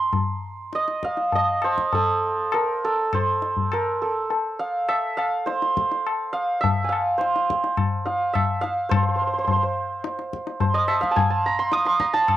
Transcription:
0.00 1.09 A#5 medium
0.00 1.26 C6 medium
0.00 0.19 D#6 medium
0.13 tabla tin medium
0.13 tabla ge medium
0.73 1.35 D#5 medium
0.73 tabla te medium
0.88 tabla te medium
1.03 3.25 F5 medium
1.03 tabla ke medium
1.17 tabla te medium
1.32 3.74 D#5 loud
1.32 tabla tin medium
1.32 tabla ge medium
1.62 3.14 C5 medium
1.62 tabla na medium
1.78 tabla ke medium
1.93 2.60 A4 medium
1.93 tabla tin medium
1.93 tabla ge medium
2.52 2.91 A#4 medium
2.52 tabla na medium
2.85 3.79 A4 medium
3.13 5.45 C5 medium
3.13 tabla na medium
3.13 tabla ge medium
3.42 tabla te medium
3.57 tabla ge medium
3.72 4.08 A#4 medium
3.72 tabla na medium
4.02 6.90 A4 medium
4.30 tabla tin medium
4.59 4.95 F5 medium
4.88 5.23 E5 loud
4.88 tabla na medium
5.17 6.32 F5 loud
5.17 tabla na medium
5.46 7.17 C5 medium
5.46 tabla te medium
5.62 tabla te medium
5.77 tabla ke medium
5.91 tabla te medium
6.06 tabla na medium
6.33 6.67 F5 loud
6.61 6.95 E5 loud
6.61 tabla tin medium
6.61 tabla ge medium
6.84 8.85 G#5 medium
6.89 8.05 F5 medium
6.89 tabla na medium
7.18 8.89 C5 medium
7.18 tabla te medium
7.36 tabla te medium
7.50 tabla ke medium
7.64 tabla te medium
7.77 tabla na medium
7.77 tabla ge medium
8.05 8.39 F5 loud
8.05 tabla te medium
8.33 8.67 E5 medium
8.33 tabla na medium
8.33 tabla ge medium
8.61 10.82 F5 loud
8.61 tabla te medium
8.89 8.96 C5 medium
8.89 tabla na loud
8.89 tabla ge loud
8.96 9.03 C5 medium
9.03 9.08 C5 medium
9.09 9.15 C5 soft
9.16 9.21 C5 medium
9.22 9.27 C5 soft
9.27 9.33 C5 soft
9.34 9.38 C5 soft
9.39 9.44 C5 medium
9.45 9.51 C5 medium
9.45 tabla tin medium
9.45 tabla ge medium
9.51 9.56 C5 medium
9.56 9.63 C5 medium
9.63 10.60 C5 medium
10.04 tabla te medium
10.19 tabla te medium
10.33 tabla ke medium
10.47 tabla te medium
10.60 12.37 C5 medium
10.60 tabla tin medium
10.60 tabla ge medium
10.74 10.94 D#5 loud
10.88 11.07 E5 loud
10.88 tabla na medium
11.01 12.37 F5 loud
11.01 tabla ke medium
11.11 11.22 A5 medium
11.16 11.36 G#5 loud
11.16 tabla tin loud
11.16 tabla ge medium
11.30 11.52 A5 medium
11.46 11.99 A#5 loud
11.59 11.86 C6 loud
11.72 12.37 D#6 loud
11.72 tabla te medium
11.86 12.37 C6 loud
11.86 tabla te medium
12.00 12.19 A#5 medium
12.00 tabla ke medium
12.13 12.37 A5 loud
12.13 tabla te medium
12.28 tabla na medium
12.28 tabla ge medium

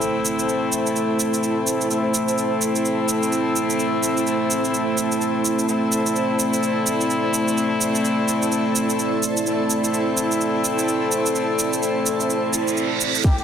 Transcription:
0.00 1.88 A3 medium
0.00 13.20 A3 medium
0.00 1.88 C4 medium
0.00 13.20 C4 medium
0.00 1.88 E4 medium
0.00 13.20 E4 medium
0.00 13.44 E4 medium
0.00 13.44 A4 medium
0.00 5.64 C5 medium
0.00 13.44 C5 medium
0.00 13.44 A5 medium
0.00 shaker soft
0.25 shaker medium
0.39 shaker soft
0.49 shaker soft
0.72 shaker medium
0.87 shaker soft
0.96 shaker soft
1.20 shaker medium
1.34 shaker soft
1.43 shaker soft
1.67 shaker medium
1.81 shaker soft
1.90 5.66 A3 medium
1.90 5.66 C4 medium
1.90 5.66 E4 medium
1.90 shaker soft
2.14 shaker medium
2.28 shaker soft
2.38 shaker soft
2.62 shaker medium
2.76 shaker soft
2.85 shaker soft
3.09 shaker medium
3.23 shaker soft
3.32 shaker soft
3.56 shaker medium
3.70 shaker soft
3.80 shaker soft
4.03 shaker medium
4.17 shaker soft
4.27 shaker soft
4.50 shaker medium
4.65 shaker soft
4.74 shaker soft
4.98 shaker medium
5.12 shaker soft
5.21 shaker soft
5.45 shaker medium
5.59 shaker soft
5.68 9.29 A3 medium
5.68 9.29 C4 medium
5.68 9.29 E4 medium
5.68 13.20 D5 medium
5.68 shaker soft
5.92 shaker medium
6.06 shaker soft
6.16 shaker soft
6.39 shaker medium
6.54 shaker soft
6.63 shaker soft
6.87 shaker medium
7.01 shaker soft
7.10 shaker soft
7.34 shaker medium
7.48 shaker soft
7.58 shaker soft
7.81 shaker medium
7.95 shaker soft
8.05 shaker soft
8.28 shaker medium
8.42 shaker soft
8.52 shaker soft
8.76 shaker medium
8.90 shaker soft
8.99 shaker soft
9.23 shaker medium
9.37 shaker soft
9.46 13.22 A3 medium
9.46 13.22 C4 medium
9.46 13.22 E4 medium
9.46 shaker soft
9.70 shaker medium
9.84 shaker soft
9.94 shaker soft
10.17 shaker medium
10.31 shaker soft
10.41 shaker soft
10.65 shaker medium
10.79 shaker soft
10.88 shaker soft
11.12 shaker medium
11.26 shaker soft
11.35 shaker soft
11.59 shaker medium
11.73 shaker soft
11.83 shaker soft
12.06 shaker medium
12.20 shaker soft
12.30 reverse cymbal medium
12.30 shaker soft
12.53 shaker medium
12.68 shaker soft
12.77 shaker soft
13.01 shaker medium
13.15 shaker soft
13.24 13.44 A3 medium
13.24 13.44 C4 medium
13.24 13.44 E4 medium
13.24 13.33 G4 medium
13.24 13.44 C5 medium
13.24 kick loud
13.24 snare soft
13.24 closed hi-hat medium
13.24 riser medium
13.24 shaker soft
13.38 13.44 G4 medium
13.38 closed hi-hat soft

